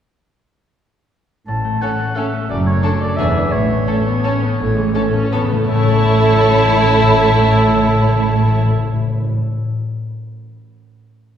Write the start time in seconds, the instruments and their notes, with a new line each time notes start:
1.48 double bass section A1, harp A2, cello section A2, oboe A5
1.64 harp A3
1.82 viola section A3, harp C#4, violin section C#4 A4, oboe F#5
1.99 harp A4
2.16 viola section A3, harp C#4, violin section C#4 A4, oboe E5
2.33 harp A3
2.49 double bass section F#1, harp F#2, cello section F#2, oboe D5
2.65 harp A3, oboe C#5
2.83 viola section A3, harp D4, violin section D4 A4
3.00 harp A4, oboe D5
3.17 double bass section E1, harp E2, cello section E2, viola section B3, violin section D4 G#4, oboe E5
3.35 harp D4 G#4
3.52 double bass section A1, harp A2, cello section A2, oboe C#5
3.70 harp A3
3.75 timpani A2
3.87 viola section A3, violin section C#4 A4, harp C#4
4.00 timpani A2
4.06 timpani A2, viola section B3, harp A4
4.16 timpani A2
4.24 timpani A2, violin section C#4 A4, viola section C#4, harp C#4
4.32 timpani A2
4.40 timpani A2, harp A3, viola section B3
4.48 timpani A2
4.59 double bass section A1, cello section A2, harp A2, timpani A2, viola section A3
4.70 timpani A2
4.76 harp E3, viola section G#3
4.86 timpani A2
4.94 timpani A2, viola section A3, violin section C#4 A4, harp C#4
5.03 timpani A2
5.10 timpani A2
5.14 viola section C#4, harp A4
5.19 timpani A2
5.28 timpani A2
5.32 timpani A2, viola section B3, harp C#4, violin section C#4 A4
5.44 timpani A2
5.51 timpani A2, harp A3, viola section A3
5.59 timpani A2
5.68 double bass section A1, timpani A2, cello section A2, harp A2, viola section A3, violin section E4 C#5, oboe A4
5.75 timpani A2, harp A3
5.82 timpani A2, harp C#4
5.89 timpani A2, harp A4
5.96 timpani A2, harp C#5
6.03 timpani A2
6.10 timpani A2
6.17 timpani A2
6.25 timpani A2
6.32 timpani A2
6.47 timpani A2
6.54 timpani A2
6.61 timpani A2
6.68 timpani A2
6.75 timpani A2
6.81 timpani A2
6.88 timpani A2
6.95 timpani A2
7.02 timpani A2
7.09 timpani A2
7.15 timpani A2
7.23 timpani A2
7.30 timpani A2
7.37 timpani A2
7.44 timpani A2
7.51 timpani A2
7.58 timpani A2
7.65 timpani A2
7.72 timpani A2
7.79 timpani A2
7.87 timpani A2
7.94 timpani A2
8.00 timpani A2
8.08 timpani A2
8.14 timpani A2
8.22 timpani A2
8.28 timpani A2
8.35 timpani A2
8.43 timpani A2
8.50 timpani A2
8.57 timpani A2
8.64 timpani A2
8.71 timpani A2
8.78 timpani A2
8.84 timpani A2
8.91 timpani A2
8.99 timpani A2
9.06 timpani A2
9.13 timpani A2
9.20 timpani A2